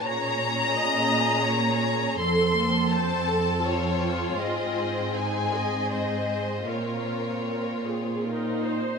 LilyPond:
<<
  \new Staff \with { instrumentName = "Violin section" } { \time 3/4 \key bes \minor \tempo 4 = 81 bes''2. | c'''4 a''4 des''4 | ees''4 aes''4 ees''4 | des''2~ des''8 r8 | }
  \new Staff \with { instrumentName = "Viola section" } { \time 3/4 \key bes \minor << { des''4 ees''4 des''4 | a'8 bes8 c''8 a'8 f'4~ | f'4 ees'8 ees''8 c''4 | bes'4 bes'8 aes'8 bes'8 c''8 | } \\ { r2. | r2. | r2. | r2 ees'4 | } >> }
  \new Staff \with { instrumentName = "Violin section" } { \time 3/4 \key bes \minor << { aes'2. | a'2. | aes'2. | f'2~ f'8 r8 | } \\ { des'2. | c'2.~ | c'2. | c'2~ c'8 r8 | } >> }
  \new Staff \with { instrumentName = "Cello section" } { \clef bass \time 3/4 \key bes \minor bes,2. | f,2. | aes,2. | bes,2~ bes,8 r8 | }
>>